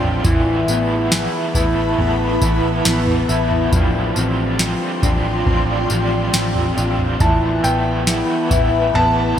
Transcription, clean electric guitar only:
0.00 0.25 F3 medium
0.00 0.33 C4 medium
0.00 0.25 D4 medium
0.25 1.11 E3 medium
0.25 1.54 E4 medium
0.69 1.98 B3 medium
1.12 2.41 E3 medium
1.56 3.28 E4 medium
1.99 2.85 B3 medium
2.43 3.73 E3 medium
2.86 3.81 B3 medium
3.29 3.73 E4 medium
3.73 4.59 F3 medium
3.73 5.03 D4 medium
4.17 5.46 C4 medium
4.60 5.89 F3 medium
5.04 6.76 D4 medium
5.47 6.32 C4 medium
5.90 7.20 F3 medium
6.34 7.29 C4 medium
6.77 7.21 D4 medium
7.20 8.06 E3 medium
7.20 8.50 E4 medium
7.64 8.93 B3 medium
8.07 9.36 E3 medium
8.51 9.39 E4 medium
8.94 9.39 B3 medium

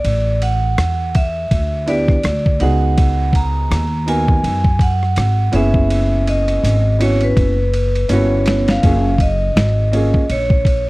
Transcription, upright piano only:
1.86 2.14 B3 medium
1.86 2.15 D4 medium
1.86 2.15 E4 medium
1.86 2.16 G4 medium
2.60 3.79 B3 medium
2.60 3.79 D#4 medium
2.60 3.80 F#4 medium
2.60 3.80 G#4 medium
4.06 4.60 B3 medium
4.06 4.61 D#4 medium
4.06 4.61 F#4 medium
4.06 4.62 A#4 medium
5.52 6.71 B3 medium
5.52 6.72 C#4 medium
5.52 6.72 E4 medium
5.52 6.73 G#4 medium
6.99 7.53 B3 medium
6.99 7.54 C#4 medium
6.99 7.54 E4 medium
6.99 7.54 F#4 medium
8.09 8.17 A#3 medium
8.09 8.81 C#4 medium
8.09 8.83 E4 medium
8.09 8.84 F#4 medium
8.15 8.86 B3 medium
8.82 9.10 A#3 medium
8.82 9.10 C#4 medium
8.82 9.11 F4 medium
8.82 9.11 G#4 medium
9.92 10.20 A#3 medium
9.92 10.20 C#4 medium
9.92 10.21 F4 medium
9.92 10.21 G#4 medium

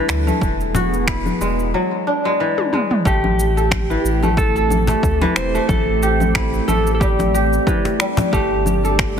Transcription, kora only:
0.00 0.47 E3 loud
0.00 0.27 A3 medium
0.00 0.60 A4 medium
0.27 1.47 A3 medium
0.75 2.21 F#4 medium
1.08 2.65 E4 medium
1.41 2.24 G#3 medium
1.74 3.11 F#3 medium
2.07 3.75 D4 medium
2.25 2.72 G#3 loud
2.40 3.11 E3 medium
2.73 3.11 G#3 medium
3.06 4.23 A3 medium
3.57 4.55 A4 medium
3.90 5.21 E3 loud
4.23 4.88 A3 medium
4.56 5.88 A4 medium
4.89 5.54 A3 medium
5.22 7.56 E3 loud
5.55 6.68 A3 medium
6.03 7.34 G4 medium
6.36 7.92 E4 medium
6.68 8.33 A3 medium
7.01 7.99 G3 medium
7.34 8.76 G4 medium
7.67 8.38 E3 medium
8.00 8.38 G3 medium
8.33 9.20 A3 loud
8.85 9.20 A4 medium

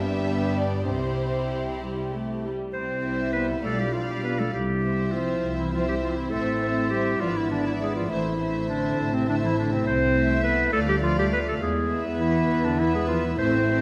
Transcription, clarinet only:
2.73 3.29 C5 medium
3.33 3.46 B4 medium
3.63 3.78 A4 medium
3.80 3.95 G4 medium
3.93 4.08 F4 soft
4.09 4.23 G4 soft
4.24 4.40 B4 medium
4.39 4.53 A4 soft
4.53 5.13 G4 medium
5.12 5.57 F4 medium
5.58 5.73 E4 soft
5.74 5.88 F4 soft
5.88 5.95 G4 soft
6.00 6.18 F4 soft
6.17 6.32 E4 soft
6.30 6.89 A4 medium
6.90 7.22 G4 medium
7.21 7.38 F4 medium
7.37 7.50 E4 medium
7.51 7.65 D4 medium
7.67 7.73 E4 medium
7.82 7.95 G#4 medium
7.96 8.10 F4 soft
8.09 8.69 E4 soft
8.69 9.16 D4 medium
9.14 9.28 C4 medium
9.29 9.35 D4 medium
9.44 9.57 E4 medium
9.58 9.74 D4 medium
9.72 9.86 C4 medium
9.87 10.43 C5 medium
10.44 10.72 B4 medium
10.73 10.80 A4 medium
10.89 10.95 G4 medium
11.03 11.17 F4 medium
11.19 11.25 G4 medium
11.33 11.39 B4 medium
11.48 11.54 A4 medium
11.62 12.03 G#4 medium
12.20 12.66 E4 medium
12.65 12.81 D4 medium
12.79 12.94 E4 medium
12.95 13.07 G#4 medium
13.08 13.27 F4 medium
13.25 13.38 E4 medium
13.38 13.81 C5 medium

